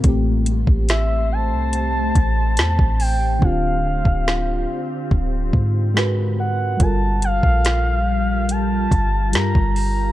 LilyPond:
<<
  \new Staff \with { instrumentName = "Soft synth lead" } { \time 4/4 \key d \minor \tempo 4 = 71 r4 e''8 a''2 g''8 | f''2 r4. fis''8 | a''8 f''4. a''4 bes''8 bes''8 | }
  \new Staff \with { instrumentName = "Ambient pad" } { \time 4/4 \key d \minor <a g' c''>1 | <d c' f'>2. r4 | <g f' g'>1 | }
  \new Staff \with { instrumentName = "FM electric piano" } { \time 4/4 \key d \minor <a, a c' g'>1 | <d c' d' f' g'>2. <gis fis' ais' b'>4 | <g f' a' bes'>2. <g f' g' bes'>4 | }
  \new Staff \with { instrumentName = "808-style bass" } { \clef bass \time 4/4 \key d \minor a,,8. a,,4 c,8. a,,8 e,16 a,,8. | d,,8. d,,8. r8 d,,8 gis,4. | g,,8. bes,,4.~ bes,,16 g,,8 g,16 g,,8. | }
  \new DrumStaff \with { instrumentName = "Drums" } \drummode { \time 4/4 <hh bd>8 hh16 bd16 <hh sn>4 hh8 <hh bd>8 <hh sn>16 bd16 hho8 | bd8. bd16 sn4 bd8 bd8 sn4 | <hh bd>8 hh16 bd16 <hh sn>4 hh8 <hh bd>8 <hh sn>16 bd16 hho8 | }
>>